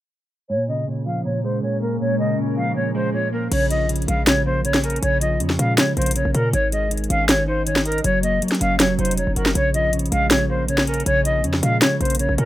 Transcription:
0.50 A#2 G#3 C#4 A#4 C#5
0.68 C#3 D#5
0.87 A#2
1.06 F3 F5
1.25 A#2 C#5
1.44 G#3 C5
1.63 A#2 C#5
1.82 A#3 A#4
2.01 A#2 C#5
2.19 C#3 D#5
2.38 A#2
2.57 F3 F5
2.76 A#2 C#5
2.95 G#3 C5
3.14 A#2 C#5
3.33 A#3 A#4
3.52 A#1 C#3 C#5, closed hi-hat, crash
3.70 F3 D#5, closed hi-hat
3.89 C#3, closed hi-hat
3.96 closed hi-hat
4.02 closed hi-hat
4.08 A#1 G#3 F5, closed hi-hat
4.27 C#3 C#5, snare, closed hi-hat
4.46 A#3 C5
4.65 C#3 C#5, closed hi-hat
4.74 snare
4.84 C#4 A#4, closed hi-hat
4.90 closed hi-hat
4.96 closed hi-hat
5.02 A#1 C#3 C#5, closed hi-hat
5.21 F3 D#5, closed hi-hat
5.40 F2 C#3, closed hi-hat
5.50 snare
5.59 A#2 G#3 F5, closed hi-hat
5.78 C#3 C#5, snare, closed hi-hat
5.97 A#1 A#3 C5, closed hi-hat
6.02 closed hi-hat
6.06 closed hi-hat
6.11 closed hi-hat
6.16 C#3 C#5, closed hi-hat
6.25 A#1
6.34 A#2 C#4 A#4, closed hi-hat
6.53 G#1 D#3 C#5, closed hi-hat
6.72 G#3 D#5, closed hi-hat
6.91 D#3, closed hi-hat
6.97 closed hi-hat
7.04 closed hi-hat
7.10 G#1 C#4 F5, closed hi-hat
7.29 D#3 C#5, snare, closed hi-hat
7.48 D#4 C5
7.67 D#3 C#5, closed hi-hat
7.76 snare
7.85 A#4 D#5, closed hi-hat
7.92 closed hi-hat
7.98 closed hi-hat
8.04 F#1 F#3 C#5, closed hi-hat
8.23 A#3 D#5, closed hi-hat
8.42 F#3, closed hi-hat
8.48 snare, closed hi-hat
8.55 closed hi-hat
8.61 F#1 C#4 F5, closed hi-hat
8.80 F#3 C#5, snare, closed hi-hat
8.99 F1 D#4 C5, closed hi-hat
9.05 closed hi-hat
9.11 closed hi-hat
9.17 F#3 C#5, closed hi-hat
9.27 F#1
9.36 F#1 F#4 A#4, closed hi-hat
9.46 snare
9.55 A#1 C#3 C#5, closed hi-hat
9.74 F3 D#5, closed hi-hat
9.93 C#3, closed hi-hat
9.99 closed hi-hat
10.06 closed hi-hat
10.12 A#1 G#3 F5, closed hi-hat
10.31 C#3 C#5, snare, closed hi-hat
10.50 A#3 C5
10.68 C#3 C#5, closed hi-hat
10.78 snare
10.87 C#4 A#4, closed hi-hat
10.94 closed hi-hat
11.00 closed hi-hat
11.06 A#1 C#3 C#5, closed hi-hat
11.25 F3 D#5, closed hi-hat
11.44 F2 C#3, closed hi-hat
11.54 snare
11.63 A#2 G#3 F5, closed hi-hat
11.82 C#3 C#5, snare, closed hi-hat
12.01 A#1 A#3 C5, closed hi-hat
12.05 closed hi-hat
12.10 closed hi-hat
12.15 closed hi-hat
12.19 C#3 C#5, closed hi-hat
12.29 A#1
12.38 A#2 C#4 A#4, closed hi-hat

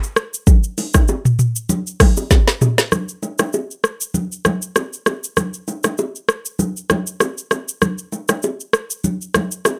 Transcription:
0.03 shaker
0.16 cross-stick, shaker
0.34 shaker
0.47 kick, low conga, shaker
0.64 shaker
0.78 open hi-hat, low bongo, shaker
0.94 kick, cross-stick, low bongo, shaker
1.08 high bongo, shaker
1.25 mid tom, shaker
1.39 mid tom, shaker
1.56 shaker
1.69 low conga, shaker
1.87 shaker
2.00 kick, cross-stick, open hi-hat, low bongo, low conga, shaker
2.17 high bongo, shaker
2.31 kick, snare, high bongo, shaker
2.48 snare, shaker
2.61 mid tom, high bongo, shaker
2.78 snare, shaker
2.92 cross-stick, low conga, shaker
3.09 shaker
3.23 low bongo, shaker
3.39 cross-stick, low bongo, shaker
3.53 high bongo, shaker
3.71 shaker
3.84 cross-stick, shaker
4.01 shaker
4.14 low conga, shaker
4.32 shaker
4.45 cross-stick, low bongo, low conga, shaker
4.62 shaker
4.76 cross-stick, high bongo, shaker
4.93 shaker
5.06 cross-stick, high bongo, shaker
5.24 shaker
5.37 cross-stick, low conga, shaker
5.54 shaker
5.68 low bongo, shaker
5.84 cross-stick, low bongo, shaker
5.98 high bongo, shaker
6.16 shaker
6.29 cross-stick, shaker
6.45 shaker
6.59 low conga, shaker
6.77 shaker
6.90 cross-stick, low bongo, low conga, shaker
7.07 shaker
7.20 cross-stick, high bongo, shaker
7.38 shaker
7.51 cross-stick, high bongo, shaker
7.68 shaker
7.82 cross-stick, low conga, shaker
7.98 shaker
8.12 low bongo, shaker
8.28 cross-stick, low bongo, shaker
8.43 high bongo, shaker
8.60 shaker
8.73 cross-stick, shaker
8.90 shaker
9.04 low conga, shaker
9.21 shaker
9.34 cross-stick, low bongo, low conga, shaker
9.51 shaker
9.65 cross-stick, high bongo, shaker

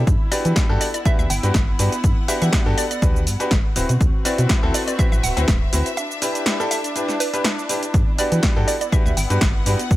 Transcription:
Already playing: D4 E4 E5
0.07 G2 B3, kick, closed hi-hat, shaker
0.31 D4 F#4 G4 B4 D5, open hi-hat, shaker
0.45 E3, closed hi-hat, shaker
0.56 kick, snare, closed hi-hat, shaker
0.69 G2 D4 F#4 G4 A4
0.81 D5, open hi-hat, shaker
0.92 D5 F#5, closed hi-hat, shaker
1.05 D4 F#4 G4 B4 E5, kick, closed hi-hat, shaker
1.19 D2 E5, shaker
1.30 G1 G5, open hi-hat, shaker
1.43 G2 D4 F#4 G4 B4, closed hi-hat, shaker
1.54 G1, kick, snare, closed hi-hat, shaker
1.79 G2 D4 F#4 G4 B4, open hi-hat, shaker
1.92 closed hi-hat, shaker
2.04 G2, kick, closed hi-hat, shaker
2.28 D4 F#4 G4 B4 E5, open hi-hat, shaker
2.42 E3 E5, closed hi-hat, shaker
2.53 kick, snare, closed hi-hat, shaker
2.66 G2 D4 F#4 G4 A4
2.78 D5, open hi-hat, shaker
2.91 D5, closed hi-hat, shaker
3.02 D2 D4 F#4 G4 B4, kick, closed hi-hat, shaker
3.16 shaker
3.27 G2, open hi-hat, shaker
3.40 D4 F#4 G4 B4, closed hi-hat, shaker
3.51 G1, kick, snare, closed hi-hat, shaker
3.76 D1 C4 E4 F#4 B4, open hi-hat, shaker
3.83 F#4
3.89 B2, closed hi-hat, shaker
4.00 D2 B4, kick, closed hi-hat, shaker
4.25 C4 E4 F#4 B4 D5, open hi-hat, shaker
4.35 B2 E5, closed hi-hat
4.39 shaker
4.49 kick, snare, closed hi-hat, shaker
4.63 D2 C4 E4 F#4 A4
4.74 D5, open hi-hat, shaker
4.87 D5, closed hi-hat, shaker
4.99 C4 E4 F#4 B4 E5, kick, closed hi-hat, shaker
5.12 A1 E5, shaker
5.23 D1 F#5, open hi-hat, shaker
5.37 D2 C4 E4 F#4 B4 F#5, closed hi-hat, shaker
5.48 D1, kick, snare, closed hi-hat, shaker
5.73 D2 C4 E4 F#4 B4, open hi-hat, shaker
5.86 closed hi-hat, shaker
5.97 D4 E5, closed hi-hat, shaker
6.11 E4, shaker
6.22 D4 E4 G4 B4, open hi-hat, shaker
6.35 closed hi-hat, shaker
6.46 snare, closed hi-hat, shaker
6.60 D4 E4 G4 A4, shaker
6.71 E5, open hi-hat, shaker
6.84 closed hi-hat, shaker
6.96 D4 E4 G4 B4, closed hi-hat, shaker
7.08 snare, shaker
7.20 B4, open hi-hat, shaker
7.33 D4 E4 G4 B4, closed hi-hat, shaker
7.44 snare, closed hi-hat, shaker
7.59 shaker
7.69 D4 E4 G4 B4, open hi-hat, shaker
7.83 closed hi-hat, shaker
7.94 G2 B3, kick, closed hi-hat, shaker
8.18 D4 F#4 G4 B4 D5, open hi-hat, shaker
8.32 E3, closed hi-hat, shaker
8.43 F#5, kick, snare, closed hi-hat, shaker
8.56 G2 D4 F#4 G4 A4
8.68 D5, open hi-hat, shaker
8.81 D5, closed hi-hat, shaker
8.92 D4 F#4 G4 B4 E5, kick, closed hi-hat, shaker
9.06 D2 E5, shaker
9.17 G1 G5, open hi-hat, shaker
9.30 G2 D4 F#4 G4 B4, closed hi-hat, shaker
9.41 G1, kick, snare, closed hi-hat, shaker
9.66 G2 D4 F#4 G4 B4, open hi-hat, shaker
9.79 closed hi-hat, shaker
9.91 G2, kick, closed hi-hat, shaker

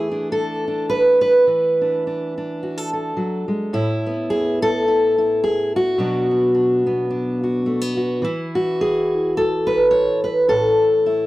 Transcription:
Already playing: E3 A3 E4 G#4
0.12 D4
0.32 A4
0.68 D4
0.90 B4
1.21 B4
1.47 E3
1.81 D4
2.07 D4
2.38 D4
2.63 F#4
2.78 A4
2.93 A4
3.17 F#3
3.48 G#3
3.73 A2 E4
4.06 B3
4.30 G#4
4.62 A4
4.88 E4
5.18 E4
5.44 G#4
5.76 F#4
5.98 B2 F#3 B3 D4
6.31 D4
6.55 D4
6.86 B3
7.10 D4
7.43 F#4
7.66 A3
7.81 B3
7.97 F#4
8.22 E3 E4
8.55 F#4
8.81 G#4
9.37 A4
9.67 B4
9.91 C#5
10.24 B4
10.48 A2 A4
11.06 E4

